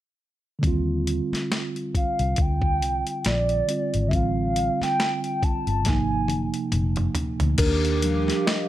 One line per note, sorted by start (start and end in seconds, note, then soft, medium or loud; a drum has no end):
0.59 3.61 D3 medium
0.59 3.63 G3 medium
0.63 1.20 D#2 medium
0.63 3.64 C4 medium
0.63 kick medium
0.63 closed hi-hat medium
0.67 3.66 F4 medium
1.07 closed hi-hat medium
1.32 muted fingered electric bass stroke soft
1.32 snare soft
1.32 closed hi-hat soft
1.52 snare loud
1.52 closed hi-hat medium
1.76 closed hi-hat soft
1.95 2.43 F5 medium
1.95 muted fingered electric bass stroke soft
1.95 kick medium
1.95 closed hi-hat soft
2.19 2.34 C2 medium
2.19 closed hi-hat soft
2.36 2.81 D2 medium
2.36 kick medium
2.36 closed hi-hat medium
2.41 3.26 G5 loud
2.62 kick medium
2.81 3.02 C2 medium
2.81 closed hi-hat medium
3.07 closed hi-hat soft
3.25 3.61 A#1 medium
3.25 4.10 D5 medium
3.25 snare medium
3.25 closed hi-hat medium
3.49 closed hi-hat soft
3.66 4.06 D3 soft
3.66 4.09 G3 soft
3.66 4.11 C4 soft
3.66 closed hi-hat medium
3.70 4.12 F4 soft
3.94 4.09 G#1 medium
3.94 closed hi-hat soft
4.07 5.79 D3 medium
4.07 5.81 G3 soft
4.07 4.16 E5 medium
4.11 4.68 A1 medium
4.11 5.82 C4 medium
4.11 4.82 F5 medium
4.11 kick loud
4.11 closed hi-hat medium
4.16 5.84 F4 medium
4.56 closed hi-hat medium
4.81 5.45 G5 medium
4.81 muted fingered electric bass stroke soft
4.81 snare soft
4.81 closed hi-hat soft
5.00 snare loud
5.00 closed hi-hat medium
5.24 closed hi-hat soft
5.43 5.89 A5 medium
5.43 muted fingered electric bass stroke soft
5.43 kick medium
5.43 closed hi-hat soft
5.67 5.87 G1 medium
5.67 closed hi-hat soft
5.81 5.91 B2 soft
5.81 7.55 F3 soft
5.81 closed hi-hat medium
5.86 6.28 G#1 medium
5.86 7.57 C3 medium
5.86 7.56 A#3 medium
5.86 7.58 D#4 medium
5.86 6.73 G#5 loud
5.86 kick medium
5.86 snare soft
6.28 6.49 F#1 medium
6.28 closed hi-hat medium
6.28 high tom medium
6.54 closed hi-hat soft
6.72 7.08 F1 medium
6.72 closed hi-hat medium
6.72 mid tom medium
6.96 closed hi-hat soft
6.96 mid tom medium
7.15 closed hi-hat medium
7.15 floor tom medium
7.40 7.56 D2 medium
7.40 closed hi-hat soft
7.40 floor tom medium
7.58 8.30 D#2 medium
7.58 8.02 D4 medium
7.58 8.68 G4 medium
7.58 8.48 A#4 medium
7.58 8.68 D6 medium
7.58 kick loud
7.58 closed hi-hat medium
7.58 crash medium
7.85 closed hi-hat soft
8.02 8.63 F3 soft
8.02 8.63 G3 soft
8.02 8.63 D4 medium
8.02 closed hi-hat medium
8.28 snare soft
8.28 closed hi-hat medium
8.47 8.68 G4 medium
8.47 8.68 D#5 medium
8.47 snare loud
8.47 closed hi-hat medium